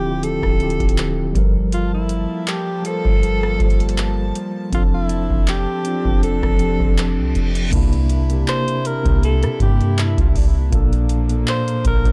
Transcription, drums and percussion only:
0.23 closed hi-hat medium
0.43 kick medium
0.43 cross-stick medium
0.60 closed hi-hat soft
0.70 closed hi-hat soft
0.80 kick medium
0.80 closed hi-hat medium
0.89 closed hi-hat medium
0.98 clap loud
0.98 closed hi-hat medium
1.35 kick loud
1.35 closed hi-hat medium
1.72 closed hi-hat medium
2.09 closed hi-hat medium
2.47 clap loud
2.47 closed hi-hat medium
2.85 closed hi-hat medium
3.05 kick loud
3.23 closed hi-hat medium
3.43 cross-stick medium
3.60 kick medium
3.60 closed hi-hat soft
3.70 closed hi-hat medium
3.80 closed hi-hat medium
3.89 closed hi-hat medium
3.98 clap loud
3.98 closed hi-hat medium
4.35 closed hi-hat medium
4.73 kick loud
4.73 closed hi-hat medium
5.09 closed hi-hat medium
5.30 kick medium
5.47 clap loud
5.47 closed hi-hat medium
5.85 closed hi-hat medium
6.05 kick loud
6.23 closed hi-hat medium
6.43 kick medium
6.43 cross-stick loud
6.59 closed hi-hat medium
6.80 kick loud
6.98 clap loud
6.98 closed hi-hat medium
7.35 closed hi-hat soft
7.55 closed hi-hat medium
7.73 kick loud
7.73 closed hi-hat medium
7.73 crash loud
7.93 closed hi-hat medium
8.09 closed hi-hat medium
8.30 closed hi-hat soft
8.48 clap loud
8.68 closed hi-hat medium
8.85 closed hi-hat medium
9.05 kick loud
9.05 closed hi-hat medium
9.23 closed hi-hat medium
9.43 cross-stick medium
9.43 closed hi-hat soft
9.60 kick medium
9.60 closed hi-hat medium
9.81 closed hi-hat medium
9.98 clap loud
9.98 closed hi-hat medium
10.18 kick medium
10.18 closed hi-hat medium
10.35 kick loud
10.35 open hi-hat medium
10.72 kick loud
10.72 closed hi-hat medium
10.93 closed hi-hat medium
11.09 closed hi-hat medium
11.29 closed hi-hat medium
11.48 clap loud
11.68 closed hi-hat medium
11.85 kick medium
11.85 closed hi-hat medium
12.05 kick loud
12.05 closed hi-hat medium

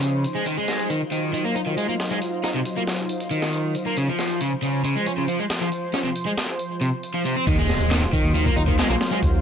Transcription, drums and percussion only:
0.03 closed hi-hat medium
0.24 closed hi-hat medium
0.46 closed hi-hat medium
0.68 snare soft
0.68 closed hi-hat medium
0.79 closed hi-hat soft
0.90 closed hi-hat medium
1.12 closed hi-hat medium
1.34 closed hi-hat medium
1.56 closed hi-hat medium
1.78 closed hi-hat medium
2.00 snare medium
2.00 closed hi-hat medium
2.11 closed hi-hat soft
2.22 closed hi-hat medium
2.44 snare soft
2.44 closed hi-hat medium
2.65 closed hi-hat medium
2.87 snare soft
2.87 closed hi-hat medium
3.09 closed hi-hat medium
3.20 closed hi-hat soft
3.31 closed hi-hat medium
3.42 snare soft
3.53 closed hi-hat medium
3.75 closed hi-hat medium
3.97 closed hi-hat medium
4.19 snare soft
4.19 closed hi-hat medium
4.30 closed hi-hat soft
4.41 closed hi-hat medium
4.63 closed hi-hat medium
4.84 closed hi-hat medium
5.06 closed hi-hat medium
5.28 closed hi-hat medium
5.50 snare medium
5.50 closed hi-hat medium
5.72 closed hi-hat medium
5.94 snare soft
5.94 closed hi-hat medium
6.16 closed hi-hat medium
6.38 snare loud
6.38 closed hi-hat medium
6.59 closed hi-hat medium
6.81 closed hi-hat medium
7.03 closed hi-hat medium
7.25 closed hi-hat medium
7.47 kick loud
7.47 closed hi-hat medium
7.47 crash medium
7.47 shaker soft
7.69 snare soft
7.69 closed hi-hat medium
7.69 open hi-hat medium
7.69 shaker medium
7.80 closed hi-hat soft
7.80 shaker soft
7.91 snare loud
7.91 clap loud
7.91 closed hi-hat medium
7.91 shaker soft
8.13 kick loud
8.13 closed hi-hat medium
8.13 open hi-hat medium
8.13 shaker medium
8.24 shaker soft
8.35 closed hi-hat medium
8.35 shaker soft
8.46 kick medium
8.57 closed hi-hat medium
8.57 open hi-hat medium
8.57 shaker medium
8.68 kick loud
8.68 shaker soft
8.79 snare loud
8.79 clap loud
8.79 closed hi-hat medium
8.79 shaker soft
8.90 shaker soft
9.01 snare medium
9.01 closed hi-hat medium
9.01 open hi-hat medium
9.01 shaker medium
9.12 closed hi-hat soft
9.12 shaker soft
9.23 kick loud
9.23 closed hi-hat medium
9.23 shaker soft

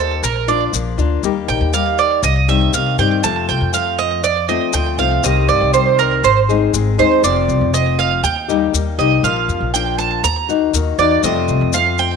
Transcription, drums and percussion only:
0.24 maracas medium
0.48 maracas soft
0.74 maracas medium
0.99 maracas soft
1.23 maracas medium
1.49 maracas soft
1.74 maracas medium
1.98 maracas soft
2.23 maracas medium
2.49 maracas soft
2.74 maracas medium
2.99 maracas soft
3.24 maracas medium
3.49 maracas soft
3.74 maracas medium
3.99 maracas soft
4.24 maracas medium
4.49 maracas soft
4.73 maracas medium
4.98 maracas soft
5.24 maracas medium
5.49 maracas soft
5.74 maracas medium
5.99 maracas soft
6.24 maracas medium
6.50 maracas soft
6.74 maracas medium
6.99 maracas soft
7.24 maracas medium
7.49 maracas soft
7.74 maracas medium
8.00 maracas soft
8.24 maracas medium
8.49 maracas soft
8.74 maracas medium
8.99 maracas soft
9.24 maracas medium
9.49 maracas soft
9.75 maracas medium
10.00 maracas soft
10.24 maracas medium
10.49 maracas soft
10.74 maracas medium
10.99 maracas soft
11.23 maracas medium
11.48 maracas soft
11.73 maracas medium
11.98 maracas soft

